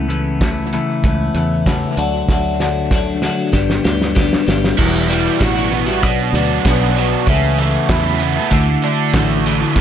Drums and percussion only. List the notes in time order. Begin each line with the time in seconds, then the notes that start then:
0.10 closed hi-hat
0.41 kick, snare, closed hi-hat
0.73 closed hi-hat
1.04 kick, closed hi-hat
1.35 closed hi-hat
1.66 kick, snare, closed hi-hat
1.97 closed hi-hat
2.29 kick, snare
2.60 snare
2.91 kick, snare
3.22 snare
3.53 kick, snare
3.70 snare
3.85 snare
4.02 snare
4.17 kick, snare
4.33 snare
4.49 snare
4.64 snare
4.79 kick, crash
5.10 closed hi-hat
5.41 kick, snare, closed hi-hat
5.72 snare, closed hi-hat
6.03 kick, closed hi-hat
6.35 closed hi-hat
6.65 kick, snare, closed hi-hat
6.96 closed hi-hat
7.27 kick, closed hi-hat
7.58 closed hi-hat
7.89 kick, snare, closed hi-hat
8.20 closed hi-hat
8.51 kick, closed hi-hat
8.82 closed hi-hat
9.14 kick, snare, closed hi-hat
9.46 closed hi-hat
9.76 kick, closed hi-hat